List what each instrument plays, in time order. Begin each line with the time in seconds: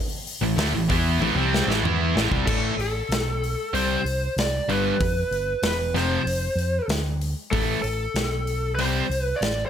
0.27 open hi-hat
0.41 fingered electric bass A1, overdriven electric guitar A2 E3
0.56 fingered electric bass D2, overdriven electric guitar D3 A3, snare, open hi-hat
0.72 fingered electric bass A1, overdriven electric guitar A2 E3
0.89 fingered electric bass E2, overdriven electric guitar E3 B3 E4, kick, open hi-hat
1.18 fingered electric bass A1, overdriven electric guitar A2 E3, high tom
1.34 fingered electric bass C2, overdriven electric guitar C3 G3 C4
1.54 snare
1.66 fingered electric bass A1, overdriven electric guitar A2 E3
1.71 snare
1.83 fingered electric bass E2, overdriven electric guitar E3 B3 E4, mid tom
2.15 fingered electric bass A1, overdriven electric guitar A2 E3, snare
2.31 fingered electric bass C2, overdriven electric guitar C3 G3, kick
2.47 fingered electric bass A1, overdriven electric guitar A2 E3 A3, lead electric guitar A4, kick, crash
2.77 fingered electric bass A1, lead electric guitar A4, open hi-hat
3.09 fingered electric bass B1, snare, open hi-hat
3.44 open hi-hat
3.73 fingered electric bass C2, overdriven electric guitar C3 G3 C4, lead electric guitar C5, open hi-hat
4.04 fingered electric bass C2, open hi-hat
4.36 fingered electric bass C2, lead electric guitar D5, snare, open hi-hat
4.67 fingered electric bass G1, overdriven electric guitar G2 D3 G3, lead electric guitar B4, open hi-hat
5.00 fingered electric bass F2, kick, open hi-hat
5.31 fingered electric bass G1, open hi-hat
5.62 fingered electric bass E1, snare, open hi-hat
5.66 lead electric guitar B4
5.94 fingered electric bass F1, overdriven electric guitar F2 C3 F3, snare, open hi-hat
5.98 lead electric guitar C5
6.25 fingered electric bass F1, open hi-hat
6.55 fingered electric bass F2, open hi-hat
6.88 fingered electric bass D2, snare, open hi-hat
7.21 open hi-hat
7.51 fingered electric bass A1, overdriven electric guitar A2 E3 A3, lead electric guitar A4, kick, open hi-hat
7.82 fingered electric bass A1, lead electric guitar A4, open hi-hat
8.14 fingered electric bass B1, snare, open hi-hat
8.47 open hi-hat
8.75 fingered electric bass C2, overdriven electric guitar C3, lead electric guitar C5, open hi-hat
8.79 overdriven electric guitar G3 C4
9.09 fingered electric bass C2, open hi-hat
9.22 lead electric guitar B4
9.36 lead electric guitar D5
9.41 fingered electric bass A1, snare, open hi-hat
9.66 lead electric guitar D5